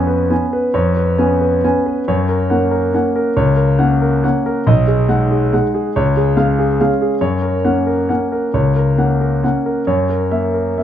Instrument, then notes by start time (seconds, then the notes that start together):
grand piano
Already playing: F2 B3 C#4 B4 C#5 G#5
0.07 B4
0.30 B3 C#4 G#5
0.53 B4
0.74 F2 C#5
0.97 B4
1.18 B3 C#4 G#5
1.41 B4
1.64 B3 C#4 G#5
1.86 B4
2.08 F#2 C#5
2.29 A#4
2.50 A#3 C#4 F#5
2.71 A#4
2.94 A#3 C#4 F#5
3.16 A#4
3.37 C#2 C#5
3.56 A#4
3.79 A#3 C#4 F#5
4.01 A#4
4.24 A#3 C#4 F#5
4.46 A#4
4.67 B1 D#5
4.87 G#4
5.09 G#3 D#4 F#5
5.31 G#4
5.53 G#3 D#4 F#5
5.74 G#4
5.96 C#2 C#5
6.17 G#4
6.37 G#3 C#4 F5
6.59 G#4
6.80 G#3 C#4 F5
7.02 G#4
7.21 F#2 C#5
7.42 A#4
7.65 A#3 C#4 F#5
7.87 A#4
8.09 A#3 C#4 F#5
8.32 A#4
8.54 C#2 C#5
8.76 A#4
8.98 A#3 C#4 F#5
9.21 A#4
9.44 A#3 C#4 F#5
9.66 A#4
9.87 F#2 C#5
10.09 A#4
10.31 A#3 E5
10.54 A#4
10.78 A#3 E5